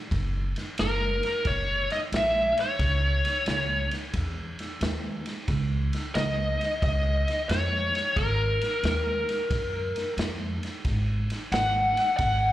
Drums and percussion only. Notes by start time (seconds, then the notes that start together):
0.11 kick, snare, ride
0.56 snare, ride
0.78 snare, ride
1.23 snare, ride
1.45 kick, snare, ride
1.90 snare, ride
2.12 snare, ride
2.57 snare, ride
2.79 kick, snare, ride
3.25 snare, ride
3.46 snare, ride
3.91 snare, ride
4.14 kick, snare, ride
4.59 snare, ride
4.81 snare, ride
5.26 snare, ride
5.48 kick, snare, ride
5.93 snare, ride
6.15 snare, ride
6.61 snare, ride
6.82 kick, snare, ride
7.28 snare, ride
7.49 snare, ride
7.95 snare, ride
8.16 kick, snare, ride
8.61 snare, ride
8.84 snare, ride
9.29 snare, ride
9.50 kick, snare, ride
9.96 snare, ride
10.18 snare, ride
10.63 snare, ride
10.85 kick, snare, ride
11.30 snare, ride
11.52 snare, ride
11.97 snare, ride
12.18 kick, snare, ride